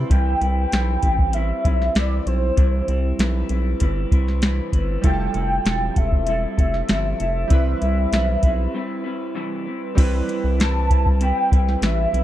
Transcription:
Already playing: synth keys G3 C4 E4 C5 E5 F5 G5 A5 B5 C6, clean electric guitar B4
0.10 analog synth bass C2, clean electric guitar C3 E3 G3 C4 E4 B4, soft synth lead G5, kick, closed hi-hat
0.41 analog synth bass C2, clean electric guitar G3 C4 E4 B4, soft synth lead G5, closed hi-hat
0.72 analog synth bass B1, clean electric guitar E3 G3 C4 E4 B4, snare, closed hi-hat
1.03 analog synth bass A1, clean electric guitar G3 C4 E4 B4, kick, closed hi-hat
1.19 kick
1.33 clean electric guitar G3 C4 E4 B4, soft synth lead E5, closed hi-hat
1.64 analog synth bass B1, clean electric guitar G3 C4 E4 B4, kick, closed hi-hat
1.82 snare
1.95 analog synth bass C2, clean electric guitar C3 E3 G3 C4 E4 B4, soft synth lead D5, snare, closed hi-hat
2.26 analog synth bass B1, clean electric guitar G3 C4 E4, soft synth lead C5, closed hi-hat
2.57 analog synth bass C2, clean electric guitar C3 E3 G3 C4 E4, kick, closed hi-hat
2.88 analog synth bass C2, clean electric guitar G3 C4 E4, closed hi-hat
3.19 analog synth bass B1, clean electric guitar E3 G3 C4 E4 B4, snare, closed hi-hat
3.49 analog synth bass B1, clean electric guitar G3 C4 E4 B4, closed hi-hat
3.80 analog synth bass G1, clean electric guitar G3 C4 E4 B4, kick, closed hi-hat
4.11 analog synth bass C2, clean electric guitar G3 C4 E4 B4, kick, closed hi-hat
4.28 snare
4.42 clean electric guitar C3 E3 G3 C4 E4 B4, snare, closed hi-hat
4.72 analog synth bass G1, clean electric guitar G3 C4 E4 B4, kick, closed hi-hat
5.02 analog synth bass F1, clean electric guitar F3 G3 C4 E4 A4, synth keys G3 E4 F4, kick, closed hi-hat
5.06 synth keys G4, soft synth lead G5
5.14 synth keys A4
5.34 analog synth bass F1, clean electric guitar C4 E4 A4, soft synth lead G5, closed hi-hat
5.65 analog synth bass E1, clean electric guitar F3 G3 C4 E4 A4, snare, closed hi-hat
5.96 analog synth bass E1, clean electric guitar C4 E4 A4, soft synth lead E5, kick, closed hi-hat
6.12 kick
6.27 clean electric guitar G3 C4 E4 A4, closed hi-hat
6.57 analog synth bass F1, clean electric guitar C4 E4 A4, soft synth lead E5, kick, closed hi-hat
6.74 snare
6.88 analog synth bass G1, clean electric guitar F3 G3 C4 E4 A4, snare, closed hi-hat
7.18 analog synth bass F1, clean electric guitar C4 E4 A4, soft synth lead E5, closed hi-hat
7.48 analog synth bass C2, clean electric guitar C3 E3 G3 C4, synth keys G3 C4 E4, kick, closed hi-hat
7.52 clean electric guitar E4 B4, synth keys B4
7.81 analog synth bass C2, clean electric guitar G3 C4 E4 B4, closed hi-hat
8.12 analog synth bass B1, clean electric guitar E3 G3 C4 E4 B4, snare, closed hi-hat
8.43 analog synth bass B1, clean electric guitar G3 C4 E4 B4, kick, closed hi-hat
8.74 clean electric guitar G3 C4 E4 B4
9.04 clean electric guitar G3 C4 E4 B4
9.35 clean electric guitar C3 E3 G3 C4 E4 B4
9.66 clean electric guitar G3 C4 E4 B4
9.95 analog synth bass C2, clean electric guitar C3 E3 G3 C4 E4 B4, synth keys G3 C4 E4, kick, closed hi-hat, crash
10.00 synth keys B4
10.28 clean electric guitar G3 C4 E4 B4, closed hi-hat
10.44 analog synth bass C2
10.59 clean electric guitar C3 E3 G3 C4 E4 B4, soft synth lead A5, snare, closed hi-hat
10.90 clean electric guitar G3 C4 E4 B4, kick, closed hi-hat
11.06 kick
11.20 clean electric guitar G3 C4 E4 B4, soft synth lead G5, closed hi-hat
11.51 analog synth bass C2, clean electric guitar G3 C4 E4 B4, kick, closed hi-hat
11.68 snare
11.82 analog synth bass A1, clean electric guitar C3 E3 G3 C4 E4 B4, soft synth lead E5, snare, closed hi-hat
12.12 analog synth bass B1, clean electric guitar G3 C4 E4 B4, closed hi-hat

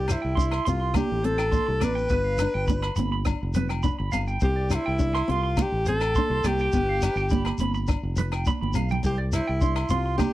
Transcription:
Already playing: fingered electric bass C2, alto saxophone G4
0.08 nylon-string guitar D4, clean electric guitar C5, cross-stick, closed hi-hat, low agogo, shekere
0.12 alto saxophone E4
0.22 fingered electric bass C2, clean electric guitar G5
0.35 nylon-string guitar D4, clean electric guitar C6, kick, muted conga
0.40 shekere
0.51 clean electric guitar C6, cross-stick, low agogo
0.65 fingered electric bass C2, nylon-string guitar C4, alto saxophone F4, clean electric guitar C6, closed hi-hat, shekere
0.80 clean electric guitar C6
0.94 nylon-string guitar D4, alto saxophone G4, kick, cross-stick, muted conga, high conga, low agogo, shekere
1.12 fingered electric bass A1
1.23 nylon-string guitar C4, alto saxophone A4, clean electric guitar C5, closed hi-hat, muted conga
1.38 clean electric guitar G5, cross-stick, low agogo, shekere
1.52 nylon-string guitar D4, clean electric guitar C6, kick, high conga, shekere
1.67 fingered electric bass C2, muted clean electric guitar stroke
1.80 fingered electric bass A1, nylon-string guitar C4, clean electric guitar D5, cross-stick, closed hi-hat, high conga, low agogo, shekere
1.84 alto saxophone B4
1.95 clean electric guitar G5, shekere
2.09 fingered electric bass G1, nylon-string guitar B3, clean electric guitar B4, kick, muted conga, shekere
2.24 clean electric guitar F5
2.38 nylon-string guitar D4, clean electric guitar B4, cross-stick, closed hi-hat, low agogo, shekere
2.54 fingered electric bass G1, clean electric guitar G5
2.68 nylon-string guitar D4, clean electric guitar B5, kick, muted conga, high conga, shekere
2.82 clean electric guitar B5, cross-stick, low agogo
2.96 fingered electric bass G1, nylon-string guitar C4, clean electric guitar B5, closed hi-hat, high conga, shekere
3.12 clean electric guitar B5
3.25 nylon-string guitar D4, kick, cross-stick, muted conga, low agogo, shekere
3.43 fingered electric bass F1
3.54 nylon-string guitar C4, clean electric guitar B4, closed hi-hat, muted conga, low conga, shekere
3.69 clean electric guitar G5, cross-stick, low agogo, shekere
3.83 nylon-string guitar D4, clean electric guitar B5, kick, high conga, shekere
3.99 fingered electric bass G1, clean electric guitar B5
4.12 fingered electric bass G1, nylon-string guitar C4, clean electric guitar F5, closed hi-hat, low agogo, shekere
4.27 clean electric guitar G5, shekere
4.40 fingered electric bass C2, nylon-string guitar C4, alto saxophone G4, clean electric guitar C5, kick, muted conga, shekere
4.56 clean electric guitar D5
4.70 nylon-string guitar D4, clean electric guitar C5, cross-stick, closed hi-hat, low agogo, shekere
4.75 alto saxophone E4
4.86 fingered electric bass C2, clean electric guitar G5
4.99 nylon-string guitar D4, muted clean electric guitar stroke, kick, muted conga, shekere
5.15 clean electric guitar C6, cross-stick, low agogo
5.28 fingered electric bass C2, nylon-string guitar C4, alto saxophone F4, clean electric guitar C6, closed hi-hat
5.43 clean electric guitar C6
5.57 nylon-string guitar D4, kick, cross-stick, muted conga, high conga, low agogo, shekere
5.62 alto saxophone G4
5.72 fingered electric bass A1
5.86 nylon-string guitar C4, alto saxophone A4, clean electric guitar C5, closed hi-hat, muted conga, shekere
6.01 clean electric guitar G5, cross-stick, low agogo, shekere
6.15 nylon-string guitar D4, clean electric guitar C6, kick, high conga, shekere
6.30 fingered electric bass C2, clean electric guitar C6
6.44 fingered electric bass C2, nylon-string guitar C4, alto saxophone G4, clean electric guitar D5, cross-stick, closed hi-hat, high conga, low agogo, shekere
6.58 clean electric guitar G5, shekere
6.72 fingered electric bass G1, nylon-string guitar B3, clean electric guitar B4, kick, muted conga, shekere
6.89 clean electric guitar F5
7.02 nylon-string guitar D4, clean electric guitar B4, cross-stick, closed hi-hat, low agogo, shekere
7.16 fingered electric bass G1, clean electric guitar G5, shekere
7.30 nylon-string guitar D4, clean electric guitar B5, kick, muted conga, high conga, shekere
7.45 clean electric guitar B5, cross-stick, low agogo
7.58 fingered electric bass G1, nylon-string guitar C4, clean electric guitar B5, closed hi-hat, high conga, shekere
7.74 clean electric guitar B5, shekere
7.87 nylon-string guitar D4, kick, cross-stick, muted conga, low agogo, shekere
8.03 fingered electric bass F1
8.16 nylon-string guitar C4, clean electric guitar B4, closed hi-hat, muted conga, low conga, shekere
8.32 clean electric guitar G5, cross-stick, low agogo, shekere
8.45 nylon-string guitar D4, clean electric guitar B5, kick, high conga, shekere
8.61 fingered electric bass G1, clean electric guitar B5, high conga
8.73 fingered electric bass B1, nylon-string guitar C4, clean electric guitar F5, closed hi-hat, low conga, low agogo, shekere
8.89 clean electric guitar G5, low conga, shekere
9.03 fingered electric bass C2, alto saxophone G4, clean electric guitar C5, muted nylon-string guitar stroke, kick, muted conga, shekere
9.18 clean electric guitar D5
9.32 nylon-string guitar D4, alto saxophone E4, clean electric guitar C5, cross-stick, closed hi-hat, low agogo, shekere
9.47 fingered electric bass C2, clean electric guitar G5
9.61 nylon-string guitar D4, clean electric guitar C6, kick, muted conga, shekere
9.76 clean electric guitar C6, cross-stick, low agogo
9.89 fingered electric bass C2, nylon-string guitar C4, alto saxophone F4, clean electric guitar C6, closed hi-hat, shekere
10.06 clean electric guitar C6
10.18 nylon-string guitar D4, alto saxophone G4, kick, cross-stick, muted conga, high conga, low agogo, shekere

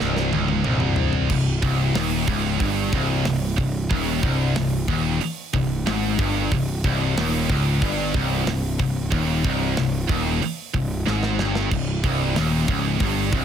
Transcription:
0.00 picked electric bass C1, distorted electric guitar C2, snare
0.17 snare
0.32 picked electric bass C#1, distorted electric guitar C#2, high tom
0.48 high tom
0.64 picked electric bass C1, distorted electric guitar C2, mid tom
0.80 mid tom
0.96 floor tom
1.13 floor tom
1.29 picked electric bass C1, distorted electric guitar C2, kick, crash
1.62 picked electric bass C1, distorted electric guitar C2, kick, open hi-hat
1.94 picked electric bass D#1, distorted electric guitar D#2, snare, open hi-hat
2.27 picked electric bass C#1, distorted electric guitar C#2, kick, open hi-hat
2.60 picked electric bass G1, distorted electric guitar G2, kick, open hi-hat
2.93 picked electric bass C1, distorted electric guitar C2, kick, open hi-hat
3.25 picked electric bass C1, distorted electric guitar C2, snare, open hi-hat
3.58 picked electric bass C1, distorted electric guitar C2, kick, open hi-hat
3.90 picked electric bass D#1, distorted electric guitar D#2, kick, open hi-hat
4.23 picked electric bass C1, distorted electric guitar C2, kick
4.55 picked electric bass C1, distorted electric guitar C2, snare, open hi-hat
4.88 picked electric bass D#1, distorted electric guitar D#2, kick, open hi-hat
5.21 muted distorted electric guitar stroke, muted picked electric bass stroke, open hi-hat
5.54 picked electric bass C1, distorted electric guitar C2, kick, open hi-hat
5.86 picked electric bass G#1, distorted electric guitar G#2, snare
6.18 picked electric bass G1, distorted electric guitar G2, kick
6.52 picked electric bass C1, distorted electric guitar C2, kick, open hi-hat
6.84 picked electric bass C1, distorted electric guitar C2, kick
7.17 picked electric bass D#1, distorted electric guitar D#2, snare, open hi-hat
7.50 picked electric bass C#1, distorted electric guitar C#2, kick
7.82 picked electric bass G1, distorted electric guitar G2, kick, open hi-hat
8.14 picked electric bass C1, distorted electric guitar C2, kick
8.45 picked electric bass C1, distorted electric guitar C2, snare, open hi-hat
8.78 picked electric bass C1, distorted electric guitar C2, kick
9.12 picked electric bass D#1, distorted electric guitar D#2, kick, open hi-hat
9.44 picked electric bass C1, distorted electric guitar C2, kick
9.77 picked electric bass C1, distorted electric guitar C2, snare, open hi-hat
10.09 picked electric bass D#1, distorted electric guitar D#2, kick
10.42 muted distorted electric guitar stroke, muted picked electric bass stroke, open hi-hat
10.74 picked electric bass C1, distorted electric guitar C2, kick
11.06 picked electric bass G#1, distorted electric guitar G#2, snare
11.23 snare
11.39 picked electric bass G1, distorted electric guitar G2, snare
11.55 snare
11.71 picked electric bass C1, distorted electric guitar C2, kick, crash
12.04 picked electric bass C1, distorted electric guitar C2, kick, open hi-hat
12.36 picked electric bass D#1, distorted electric guitar D#2, snare, open hi-hat
12.68 picked electric bass C#1, distorted electric guitar C#2, kick, open hi-hat
13.00 picked electric bass G1, distorted electric guitar G2, kick, open hi-hat
13.33 picked electric bass C1, distorted electric guitar C2, kick

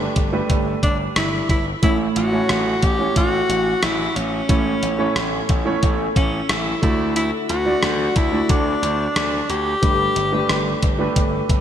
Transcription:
Already playing: grand piano G2 A3 D4 G4 B4, alto saxophone D4
0.16 slap bass G1, kick, closed hi-hat
0.32 grand piano A3 D4 G4 B4
0.50 slap bass G1, kick, closed hi-hat
0.83 slap bass G1, alto saxophone D4, kick, closed hi-hat
1.16 slap bass G1, alto saxophone E4, cross-stick, closed hi-hat
1.49 slap bass G1, alto saxophone E4, kick, closed hi-hat
1.82 slap bass A1, grand piano A2 A3 C#4 E4 C#5, alto saxophone E4, kick, closed hi-hat
2.16 slap bass A1, alto saxophone F#4, closed hi-hat
2.32 grand piano A3 C#4 E4 C#5
2.49 slap bass A1, cross-stick, closed hi-hat
2.82 slap bass A1, alto saxophone G4, kick, closed hi-hat
2.99 grand piano A3 C#4 E4 C#5
3.16 slap bass A1, alto saxophone F#4, kick, closed hi-hat
3.49 slap bass A1, closed hi-hat
3.83 slap bass A1, alto saxophone E4, cross-stick, closed hi-hat
4.16 slap bass A1, alto saxophone C#4, closed hi-hat
4.49 slap bass A1, grand piano A2 A3 C#4 E4 C#5, kick, closed hi-hat
4.83 slap bass A1, closed hi-hat
4.99 grand piano A3 C#4 E4 C#5
5.16 slap bass A1, cross-stick, closed hi-hat
5.49 slap bass A1, kick, closed hi-hat
5.65 grand piano A3 C#4 E4 C#5
5.83 slap bass A1, kick, closed hi-hat
6.16 slap bass A1, alto saxophone C#4, kick, closed hi-hat
6.49 slap bass A1, alto saxophone E4, cross-stick, closed hi-hat
6.82 slap bass D2, grand piano D3 A3 D4 F#4 D5, alto saxophone E4, kick, closed hi-hat
7.16 alto saxophone E4, closed hi-hat
7.49 slap bass D2, alto saxophone F#4, closed hi-hat
7.65 grand piano A3 D4 F#4 D5
7.83 slap bass D2, cross-stick, closed hi-hat
8.16 slap bass D2, alto saxophone E4, kick, closed hi-hat
8.32 grand piano A3 D4 F#4 D5
8.49 slap bass D2, alto saxophone D4, kick, closed hi-hat
8.82 slap bass D2, closed hi-hat
9.16 slap bass D2, alto saxophone D4, cross-stick, closed hi-hat
9.49 slap bass D2, alto saxophone G4, closed hi-hat
9.82 slap bass G1, grand piano G2 A3 D4 G4 B4, kick, closed hi-hat
10.16 slap bass G1, closed hi-hat
10.32 grand piano A3 D4 G4 B4
10.49 slap bass G1, cross-stick, closed hi-hat
10.83 slap bass G1, kick, closed hi-hat
10.99 grand piano A3 D4 G4 B4
11.16 slap bass G1, kick, closed hi-hat
11.49 slap bass G1, kick, closed hi-hat

